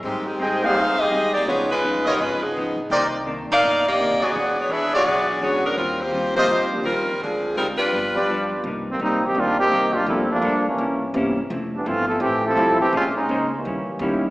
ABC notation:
X:1
M:4/4
L:1/8
Q:"Swing" 1/4=168
K:Eb
V:1 name="Trumpet section"
z2 [Aceg]3 z3 | z3 [F_c_de] z4 | [EBcd] z6 [_GA_d=d] | z3 [^F^G^cd] z4 |
z3 [FGce] z4 | z4 z [FG=Bd]3 | [K:Fdor] z8 | z8 |
z8 | z8 |]
V:2 name="Saxophone section"
[E,A,CG] [E,CGA]2 [EAcf]2 [CGAe]2 [B,EGd] | [_CFA_d] [A,EF_c]2 [G,CEB] [A,EFc] [F,CEA]2 z | [E,B,DG] z2 [EBdf]2 [B,Gde]2 [_C_GAd]- | [_C_GAd] [=B,^F^G^c] [DG=B=e] [B,FGd]3 [B,FGc] [^F,B,D_B] |
[G,CFB] [B,FGc]2 [B,FGc]2 z [G,CFB]2 | [F,CDA]2 [G,CEB] [G,DF_c]4 z | [K:Fdor] z8 | z8 |
z8 | z8 |]
V:3 name="Trombone section"
z8 | z8 | z8 | z8 |
z8 | z8 | [K:Fdor] z [E,G,B,C] [G,B,CE] [E,B,CG] [G,B,DF] [E,B,CG]2 [G,B,DF] | [F,=A,C=E] [F,A,B,D]2 [=E,G,B,_D]3 z2 |
z [=E,G,=B,D] [E,=A,CF] [F,C=E=A] [E,A,CG] [F,CEA]2 [E,A,CG] | [A,C_DF] [A,CDE]2 [=E,G,B,D]3 z2 |]
V:4 name="Grand piano"
z3 [G,B,CE] z4 | [F,A,_CE] z6 z | z8 | z6 [D,^F,^G,^C]2 |
z3 [F,G,B,C] z [F,G,B,D] z2 | z4 z [F,G,=B,D]3 | [K:Fdor] z4 [E,G,B,CD] z3 | [F,G,=A,B,D]3 z3 [=E,G,B,C_D] z |
z6 [F,G,=A,C=E] z | z6 [G,B,_DE_F] z |]
V:5 name="Hollow-body jazz guitar"
[A,,G,CE] z [A,,G,CE] z [A,,G,CE] z [A,,G,CE] z | [_D,F,_CE] z [D,F,CE] z [D,F,CE] z [D,F,CE] z | [C,E,B,D] z [C,E,B,D] z [C,E,B,D] z [C,E,B,D] z | [=E,D^G^c] z [E,DGc] z [E,DGc] z [E,DGc] z |
[E,G,CF] z [E,G,CF] z [E,G,CF] z [E,G,CF] z | [D,A,CF] z [D,A,CF] z [G,,F,=B,D] z [G,,F,B,D] z | [K:Fdor] [C,G,B,E] z [C,G,B,E] z [C,G,B,E] z [C,G,B,E] z | [G,B,F=A] z [G,B,FA] z [C,B,_D=E] z [C,B,DE] z |
[F,=A,C=E] z [F,A,CE] z [F,A,CE] z [F,A,CE] z | [B,_DAc] z [B,DAc] z [E,G,D_F] z [E,G,DF] z |]
V:6 name="Upright bass" clef=bass
A,,4 E,,4 | _D,,2- (3D,, E,, _C,, A,,,3 B,,, | C,,2- (3C,, D,, B,,, G,,,2- (3G,,, B,,, F,,, | =E,,,4 =B,,,4 |
E,,4 B,,,4 | D,,3 z G,,,4 | [K:Fdor] C,,2 B,,,2 D,,2 C,,2 | G,,,2 B,,,2 C,,2 G,,, z |
F,,,2 G,,,2 =A,,,2 =B,,,2 | B,,,2 _D,,2 E,, z _F,,2 |]